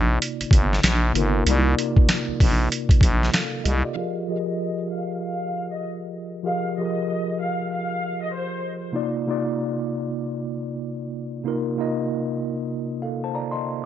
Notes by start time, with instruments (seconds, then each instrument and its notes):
Already playing: fm bass A#1, tine electric piano C3 A#3 D#4 F4 D5
0.22 closed hi-hat
0.41 fm bass G1, closed hi-hat
0.51 fm bass G1, kick, closed hi-hat
0.73 snare
0.83 fm bass A#1, snare, closed hi-hat
1.13 fm bass G1, tine electric piano C3 A#3 D#4 F4, closed hi-hat
1.17 tine electric piano A#4
1.47 fm bass C2, tine electric piano C3 A#3 D#4 F4, closed hi-hat
1.51 tine electric piano D5
1.79 closed hi-hat
1.97 kick
2.09 snare, closed hi-hat
2.29 fm bass A#1
2.40 fm bass A#1, kick, open hi-hat
2.72 closed hi-hat
2.89 kick, closed hi-hat
3.01 fm bass A#1, kick, closed hi-hat
3.23 snare
3.33 tine electric piano A4 F5, snare, closed hi-hat
3.64 fm bass C2, tine electric piano G4 D#5, closed hi-hat
3.84 tine electric piano F4 D5
3.95 tine electric piano F3 F4 G4 G#4 A#4, violin section F5
3.99 tine electric piano D#5
4.28 tine electric piano F3 F4 G4 G#4 A#4, violin section D#5
4.32 tine electric piano D#5
4.90 violin section F5
5.22 violin section F5
5.72 violin section D#5
6.43 tine electric piano F3 F4 G4 G#4 A#4, violin section F5
6.47 tine electric piano D#5
6.78 tine electric piano F3 F4 G4 G#4 A#4, violin section D#5
6.82 tine electric piano D#5
7.40 violin section F5
7.72 violin section F5
8.22 violin section D#5
8.33 violin section C5
8.92 tine electric piano C3 A#3 D#4 F4
8.96 tine electric piano D5
9.26 tine electric piano C3 A#3 D#4 F4
9.31 tine electric piano D5
11.44 tine electric piano C3 A#3 D#4 F4
11.48 tine electric piano A#4
11.77 tine electric piano C3 A#3 D#4 F4
11.81 tine electric piano D#5
13.02 tine electric piano A4 F5
13.24 tine electric piano C5 A5
13.35 tine electric piano D5 A#5
13.51 tine electric piano D#5 C6